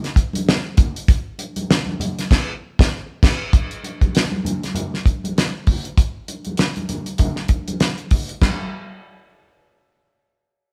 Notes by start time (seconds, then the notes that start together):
0.04 snare, closed hi-hat
0.16 kick, closed hi-hat
0.33 closed hi-hat, high conga
0.46 snare, muted conga
0.77 kick, closed hi-hat, low conga
0.96 closed hi-hat
1.08 kick, closed hi-hat
1.39 closed hi-hat, muted conga
1.56 closed hi-hat, high conga
1.70 snare, muted conga
1.86 high conga
2.00 closed hi-hat, high conga, low conga
2.19 snare, closed hi-hat
2.31 kick, snare, crash
2.79 kick, snare
3.23 kick, snare, crash
3.53 kick, closed hi-hat, muted conga
3.71 closed hi-hat
3.84 closed hi-hat, muted conga
4.01 kick, closed hi-hat, high conga
4.15 snare, closed hi-hat, muted conga
4.31 high conga
4.45 closed hi-hat, muted conga, high conga, low conga
4.63 snare, closed hi-hat
4.75 closed hi-hat, high conga, low conga
4.94 snare
5.05 kick, closed hi-hat, muted conga
5.24 closed hi-hat, high conga
5.37 snare, closed hi-hat, muted conga
5.67 kick, open hi-hat, muted conga, low conga
5.85 closed hi-hat
5.98 kick, closed hi-hat
6.28 closed hi-hat, muted conga
6.45 closed hi-hat, high conga
6.57 snare, closed hi-hat, muted conga
6.76 closed hi-hat, high conga
6.89 closed hi-hat, high conga, low conga
7.06 closed hi-hat
7.18 kick, closed hi-hat, high conga, low conga
7.36 snare
7.48 kick, closed hi-hat, muted conga
7.68 closed hi-hat, high conga
7.80 snare, closed hi-hat, muted conga
7.98 closed hi-hat
8.11 kick, open hi-hat, low conga
8.29 closed hi-hat
8.41 kick, snare, china, high conga